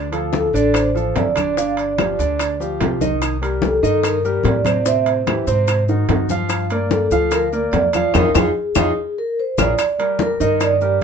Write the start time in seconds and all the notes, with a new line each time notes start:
Already playing: D2
0.12 F3 F4 A4, high conga, high timbale, maracas
0.33 A4, high bongo, high conga, low timbale, maracas
0.53 A1 D3 D4 D5, high bongo, high conga, maracas
0.74 C5, high bongo, high conga, high timbale, claves, maracas
0.95 F3 F4 A4, high bongo, high conga, maracas
1.16 G1 D5, high bongo, low bongo, high conga, high timbale, low timbale, maracas
1.36 D3 D4 D5, high bongo, high conga, high timbale, claves, maracas
1.57 D3 D4 D5 F5, high bongo, high conga, maracas
1.77 D5, high conga, high timbale, maracas
1.98 F3 F4 G4, high bongo, high conga, high timbale, low timbale, claves, maracas
2.19 D2 D3 D4 D5, high bongo, high conga, maracas
2.39 high bongo, high conga, high timbale, claves, maracas
2.60 F3 F4 G4, high bongo, high conga, maracas
2.81 C2 F3 F4 G4, high bongo, low bongo, high conga, high timbale, low timbale, maracas
3.01 D#3 D#4 D#5, high bongo, high conga, maracas
3.21 high bongo, high conga, high timbale, claves, maracas
3.42 G3 G4 A#4, high conga, high timbale, maracas
3.62 A4, high bongo, high conga, low timbale, maracas
3.83 G2 D#3 D#4 D#5, high bongo, high conga, maracas
4.03 A#4, high bongo, high conga, high timbale, claves, maracas
4.23 G3 G4 A#4, high bongo, high conga, maracas
4.43 A2, high bongo, low bongo, high conga, high timbale, low timbale, maracas
4.48 D5
4.64 C3 C4 C5, high bongo, high conga, high timbale, claves, maracas
4.85 C3 C4 C5 E5, high bongo, high conga, maracas
5.06 C5, high conga, high timbale, maracas
5.26 E3 E4 G4, high bongo, high conga, high timbale, low timbale, claves, maracas
5.47 G#2 C3 C4 C5, high bongo, high conga, maracas
5.67 high bongo, high conga, high timbale, claves, maracas
5.88 D#3 D#4 F#4, high bongo, high conga, maracas
6.09 G2 D#3 D#4 F#4, high bongo, low bongo, high conga, high timbale, low timbale, maracas
6.29 F3 F4 F5, high bongo, high conga, maracas
6.49 high bongo, high conga, high timbale, claves, maracas
6.70 A#3 A#4 D5, high conga, high timbale, maracas
6.91 A4, high bongo, high conga, low timbale, maracas
7.11 D2 F3 F4 F5, high bongo, high conga, maracas
7.31 A#4, high bongo, high conga, high timbale, claves, maracas
7.53 A#3 A#4 D5, high bongo, high conga, maracas
7.72 F2 D5, high bongo, low bongo, high conga, high timbale, low timbale, maracas
7.93 F3 F4 F5, high bongo, high conga, high timbale, claves, maracas
8.14 F2 D#4 F4 G#4 A#4, low bongo, high conga, high timbale, claves, maracas
8.35 F2 D#4 F4 G#4, low bongo, high conga, high timbale, claves, maracas
8.75 F2 D#4 F4 G#4, low bongo, high conga, high timbale, claves, maracas
9.18 A#4
9.40 C5
9.58 A#1 F4 G#4 A#4 D5, low bongo, high conga, high timbale, claves, maracas
9.78 high bongo, high conga, high timbale, claves, maracas
9.99 G3 G4 A#4, high conga, high timbale, maracas
10.19 A#4, high bongo, high conga, low timbale, maracas
10.40 G2 D#3 D#4 D#5, high bongo, high conga, maracas
10.60 D5, high bongo, high conga, high timbale, claves, maracas
10.81 G3 G4 A#4, high bongo, high conga, maracas